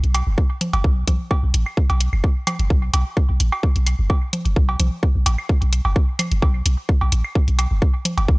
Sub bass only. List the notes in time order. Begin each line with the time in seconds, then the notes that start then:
0.04 B1
0.27 F#1
0.73 F#1
0.84 B1
1.07 B1
1.43 B1
1.54 A1
1.90 B1
2.13 F#1
2.59 F#1
2.70 B1
2.93 B1
3.29 B1
3.40 A1
3.76 B1
3.99 F#1
4.45 F#1
4.56 B1
4.80 B1
5.15 B1
5.26 A1
5.62 B1
5.85 F#1
6.31 F#1
6.42 B1
6.66 B1
7.01 B1
7.12 A1
7.48 B1
7.71 F#1
8.18 F#1
8.28 B1